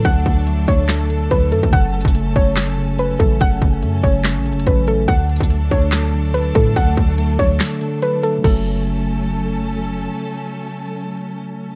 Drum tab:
CC |------------------------------------------------|------------------------------------------------|------------------------------------------------|------------------------------------------------|
HH |x-----------x-----------x-----x-----x-----x-----|x-----x-x-x-x-----------x-----------x-----x-----|x-----------x-----------x-----x-x-x-x-----x-----|x-----x-x-x-x-----------x-----------x-----x-----|
CP |------------------------x-----------------------|------------------------x-----------------------|------------------------x-----------------------|------------------------x-----------------------|
SD |------------------------o-----------------------|------------------------o-----------------------|------------------------o-----------------------|------------------------o-----------------------|
BD |o-----o-----------o-----------------o--------o--|o--------o--------o-----------------------o-----|o-----o-----------o-----------------o-----------|o--------o--------o-----------------------o-----|

CC |------------------------------------------------|x-----------------------------------------------|------------------------------------------------|
HH |x-----------x-----------x-----x-----x-----x-----|------------------------------------------------|------------------------------------------------|
CP |------------------------x-----------------------|------------------------------------------------|------------------------------------------------|
SD |------------------------o-----------------------|------------------------------------------------|------------------------------------------------|
BD |o-----o-----------o-----------------------------|o-----------------------------------------------|------------------------------------------------|